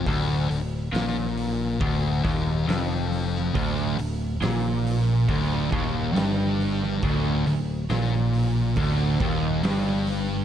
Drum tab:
HH |o-o-o-o-o-o-o-o-|o-o-o-o-o-o-o-o-|o-o-o-o-o-o-o-o-|
SD |----o-------o--o|----o-------o--o|----o-------o---|
BD |o-------o-o-----|o-------o-o-----|o-------o-o-----|